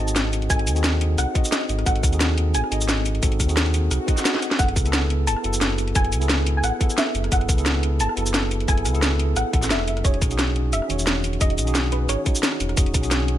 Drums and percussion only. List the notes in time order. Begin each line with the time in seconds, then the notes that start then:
0.08 shaker
0.16 snare, closed hi-hat, shaker
0.33 closed hi-hat, shaker
0.42 closed hi-hat
0.50 kick, closed hi-hat, shaker
0.59 closed hi-hat
0.67 closed hi-hat, shaker
0.76 closed hi-hat, shaker
0.84 snare, closed hi-hat, shaker
1.01 closed hi-hat
1.18 cross-stick, closed hi-hat, shaker
1.35 kick, closed hi-hat, shaker
1.45 shaker
1.52 snare, closed hi-hat, shaker
1.61 cross-stick
1.69 closed hi-hat, shaker
1.79 cross-stick, closed hi-hat
1.86 kick, closed hi-hat, shaker
1.96 closed hi-hat
2.03 kick, cross-stick, closed hi-hat, shaker
2.13 closed hi-hat, shaker
2.21 snare, closed hi-hat, shaker
2.38 closed hi-hat
2.54 closed hi-hat, shaker
2.64 cross-stick
2.72 closed hi-hat, shaker
2.81 shaker
2.89 snare, closed hi-hat, shaker
3.06 closed hi-hat, shaker
3.15 closed hi-hat
3.23 kick, closed hi-hat, shaker
3.32 closed hi-hat
3.40 kick, cross-stick, closed hi-hat, shaker
3.49 closed hi-hat, shaker
3.57 snare, closed hi-hat, shaker
3.66 closed hi-hat
3.74 closed hi-hat, shaker
3.91 cross-stick, closed hi-hat, shaker
4.08 kick, closed hi-hat, shaker
4.17 snare, shaker
4.25 snare, closed hi-hat, shaker
4.34 snare
4.42 closed hi-hat, shaker
4.51 snare, closed hi-hat
4.59 kick, closed hi-hat, shaker
4.68 closed hi-hat
4.76 kick, cross-stick, closed hi-hat, shaker
4.86 closed hi-hat, shaker
4.93 snare, closed hi-hat, shaker
5.10 closed hi-hat
5.27 closed hi-hat, shaker
5.37 cross-stick
5.44 closed hi-hat, shaker
5.53 shaker
5.61 snare, closed hi-hat, shaker
5.78 closed hi-hat, shaker
5.88 closed hi-hat
5.95 kick, closed hi-hat, shaker
6.05 closed hi-hat
6.12 closed hi-hat, shaker
6.22 closed hi-hat, shaker
6.29 snare, closed hi-hat, shaker
6.47 closed hi-hat
6.64 cross-stick, closed hi-hat, shaker
6.81 kick, closed hi-hat, shaker
6.90 shaker
6.98 snare, closed hi-hat, shaker
7.07 cross-stick
7.15 closed hi-hat, shaker
7.24 cross-stick, closed hi-hat
7.32 kick, closed hi-hat, shaker
7.41 closed hi-hat
7.49 kick, cross-stick, closed hi-hat, shaker
7.58 closed hi-hat, shaker
7.66 snare, closed hi-hat, shaker
7.83 closed hi-hat
8.00 closed hi-hat, shaker
8.09 cross-stick
8.17 closed hi-hat, shaker
8.26 shaker
8.34 snare, closed hi-hat, shaker
8.51 closed hi-hat, shaker
8.60 closed hi-hat
8.68 kick, closed hi-hat, shaker
8.78 closed hi-hat
8.85 cross-stick, closed hi-hat, shaker
8.95 closed hi-hat, shaker
9.03 snare, closed hi-hat, shaker
9.19 closed hi-hat
9.36 cross-stick, closed hi-hat, shaker
9.53 kick, closed hi-hat, shaker
9.63 snare, shaker
9.71 snare, closed hi-hat, shaker
9.80 cross-stick
9.88 closed hi-hat, shaker
9.97 cross-stick, closed hi-hat
10.05 kick, closed hi-hat, shaker
10.14 closed hi-hat
10.22 kick, cross-stick, closed hi-hat, shaker
10.31 closed hi-hat, shaker
10.39 snare, closed hi-hat, shaker
10.56 closed hi-hat
10.73 closed hi-hat, shaker
10.82 cross-stick
10.90 closed hi-hat, shaker
10.99 shaker
11.07 snare, closed hi-hat, shaker
11.24 closed hi-hat, shaker
11.33 closed hi-hat
11.41 kick, closed hi-hat, shaker
11.50 closed hi-hat
11.58 closed hi-hat, shaker
11.67 closed hi-hat, shaker
11.75 snare, closed hi-hat, shaker
11.92 closed hi-hat
12.09 cross-stick, closed hi-hat, shaker
12.26 kick, closed hi-hat, shaker
12.35 shaker
12.43 snare, closed hi-hat, shaker
12.52 cross-stick
12.60 closed hi-hat, shaker
12.69 cross-stick, closed hi-hat
12.77 kick, closed hi-hat, shaker
12.86 closed hi-hat
12.94 kick, cross-stick, closed hi-hat, shaker
13.03 closed hi-hat, shaker
13.11 snare, closed hi-hat, shaker
13.28 closed hi-hat